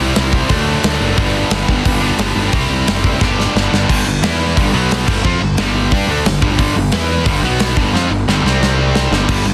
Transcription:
0.00 0.12 C2 medium
0.00 0.48 C3 medium
0.00 0.49 G3 loud
0.00 0.50 C4 loud
0.00 0.50 E4 loud
0.15 0.42 C2 medium
0.15 snare loud
0.15 open hi-hat medium
0.33 kick medium
0.49 0.75 D2 loud
0.49 1.16 D3 medium
0.49 1.17 F#3 loud
0.49 1.17 A3 loud
0.49 1.17 D4 loud
0.49 kick loud
0.49 open hi-hat medium
0.83 0.96 D2 medium
0.83 snare loud
0.83 open hi-hat medium
1.00 1.13 F#1 medium
1.16 1.43 G1 loud
1.16 2.00 G2 medium
1.16 2.01 D3 medium
1.16 2.01 G3 loud
1.16 2.00 B3 loud
1.16 2.00 D4 medium
1.16 kick loud
1.16 open hi-hat medium
1.51 1.64 G1 medium
1.51 snare loud
1.51 open hi-hat medium
1.69 1.81 G1 medium
1.69 kick medium
1.85 2.11 G1 loud
1.85 kick loud
1.85 open hi-hat medium
2.01 2.18 G2 medium
2.01 2.18 D3 medium
2.01 2.20 G3 medium
2.01 2.17 B3 medium
2.01 2.17 D4 medium
2.19 2.31 G1 medium
2.19 2.52 G2 medium
2.19 2.52 D3 medium
2.19 2.52 G3 medium
2.19 2.53 B3 medium
2.19 2.53 D4 medium
2.19 snare loud
2.19 open hi-hat medium
2.36 2.48 G1 loud
2.52 2.66 C2 loud
2.52 3.20 C3 medium
2.52 3.20 G3 medium
2.52 3.20 C4 medium
2.52 3.20 E4 loud
2.52 3.21 G4 loud
2.52 kick loud
2.52 open hi-hat medium
2.69 2.82 C2 loud
2.87 3.12 F#1 medium
2.87 snare loud
2.87 open hi-hat medium
3.04 kick loud
3.21 3.46 G1 loud
3.21 3.87 G2 medium
3.21 3.87 D3 loud
3.21 3.88 G3 medium
3.21 3.88 B3 loud
3.21 3.88 D4 loud
3.21 3.89 G4 loud
3.21 kick loud
3.21 snare medium
3.40 snare medium
3.55 3.68 G1 medium
3.55 snare loud
3.72 3.84 G1 medium
3.72 snare medium
3.89 4.05 G1 medium
3.89 4.05 G2 loud
3.89 4.05 D3 loud
3.89 4.06 G3 loud
3.89 kick loud
3.89 crash loud
4.06 4.21 G1 medium
4.06 4.19 G2 medium
4.06 4.19 D3 medium
4.22 4.53 E2 medium
4.22 4.56 E3 loud
4.22 4.56 B3 loud
4.22 4.56 E4 loud
4.22 snare loud
4.22 open hi-hat medium
4.56 4.72 G1 loud
4.56 4.72 G2 loud
4.56 4.72 D3 loud
4.56 4.73 G3 loud
4.56 kick loud
4.56 open hi-hat medium
4.73 5.04 B1 loud
4.73 5.06 B2 medium
4.73 5.06 F#3 medium
4.73 5.07 B3 loud
4.91 snare loud
4.91 open hi-hat medium
5.06 5.23 G1 loud
5.06 5.23 G2 loud
5.06 5.23 D3 loud
5.06 5.23 G3 loud
5.06 kick loud
5.06 crash loud
5.24 5.40 F2 loud
5.24 5.40 F3 medium
5.24 5.40 C4 loud
5.24 5.41 F4 loud
5.24 kick loud
5.41 5.57 G1 medium
5.41 5.55 G2 medium
5.41 5.54 D3 medium
5.57 5.89 G1 medium
5.57 5.91 G2 medium
5.57 5.91 D3 loud
5.57 5.91 G3 loud
5.57 snare loud
5.57 open hi-hat medium
5.91 6.06 G2 loud
5.91 6.08 G3 medium
5.91 6.09 D4 loud
5.91 6.09 G4 loud
5.91 kick loud
5.91 open hi-hat medium
6.07 6.23 D2 loud
6.07 6.25 D3 medium
6.07 6.25 A3 medium
6.07 6.26 D4 loud
6.25 6.41 G1 medium
6.25 6.40 G2 medium
6.25 6.40 D3 medium
6.25 snare loud
6.25 open hi-hat medium
6.42 6.58 G1 loud
6.42 6.58 G2 loud
6.42 6.59 D3 loud
6.42 6.58 G3 loud
6.42 kick loud
6.59 6.75 G1 loud
6.59 6.75 G2 medium
6.59 6.76 D3 loud
6.59 6.76 G3 loud
6.59 kick loud
6.59 open hi-hat medium
6.76 6.91 G1 medium
6.76 6.90 G2 medium
6.76 6.90 D3 medium
6.92 7.25 E2 medium
6.92 7.25 E3 medium
6.92 7.26 B3 loud
6.92 7.26 E4 loud
6.92 snare loud
6.92 open hi-hat medium
7.26 7.42 G1 loud
7.26 7.43 G2 medium
7.26 7.42 D3 loud
7.26 7.43 G3 loud
7.26 kick loud
7.26 open hi-hat medium
7.42 7.74 B1 loud
7.42 7.76 B2 medium
7.42 7.76 F#3 loud
7.42 7.77 B3 loud
7.60 snare loud
7.60 open hi-hat medium
7.76 7.93 G1 loud
7.76 7.93 G2 loud
7.76 7.93 D3 loud
7.76 7.93 G3 loud
7.76 kick loud
7.93 8.09 F2 loud
7.93 8.10 F3 medium
7.93 8.10 C4 loud
7.93 8.11 F4 loud
7.93 snare medium
8.09 8.26 G1 medium
8.09 8.24 G2 medium
8.09 8.24 D3 medium
8.27 8.42 G1 loud
8.27 8.44 G2 medium
8.27 8.45 D3 loud
8.27 8.45 G3 loud
8.27 snare medium
8.43 9.07 C2 loud
8.43 9.12 C3 medium
8.43 9.12 G3 loud
8.43 9.12 C4 loud
8.43 snare medium
8.63 snare loud
8.95 snare loud
9.11 9.27 G1 loud
9.11 9.28 G2 medium
9.11 9.28 D3 medium
9.11 9.28 G3 loud
9.11 snare medium
9.28 9.44 G1 medium
9.28 9.45 G2 medium
9.28 9.45 D3 medium
9.28 9.45 G3 loud
9.28 kick loud
9.28 crash loud
9.28 crash medium
9.44 9.54 G1 medium
9.44 9.54 G2 medium
9.44 9.54 D3 medium
9.44 crash medium

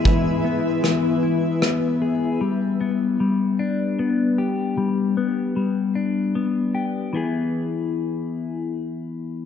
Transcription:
0.00 2.36 G#3 medium
0.00 0.44 B3 soft
0.00 0.84 E4 soft
0.00 2.37 E4 medium
0.00 1.62 G#4 soft
0.00 2.36 B4 medium
0.00 2.37 E5 medium
0.05 0.82 E3 soft
0.05 kick medium
0.45 1.62 B3 soft
0.84 2.40 E3 soft
0.84 cross-stick soft
1.23 2.41 E4 soft
1.62 2.80 B3 soft
1.62 cross-stick soft
2.02 2.41 G#4 soft
2.41 3.19 G3 soft
2.81 3.99 B3 soft
3.20 4.76 G3 soft
3.59 5.56 D4 soft
3.99 5.16 B3 soft
4.38 6.35 G4 soft
4.77 5.55 G3 soft
5.17 6.34 B3 soft
5.56 7.12 G3 soft
5.95 7.13 D4 soft
6.35 7.13 B3 soft
6.75 7.14 G4 soft
7.13 9.45 E3 soft
7.13 9.45 B3 soft
7.13 9.45 E4 soft
7.13 9.45 G#4 medium

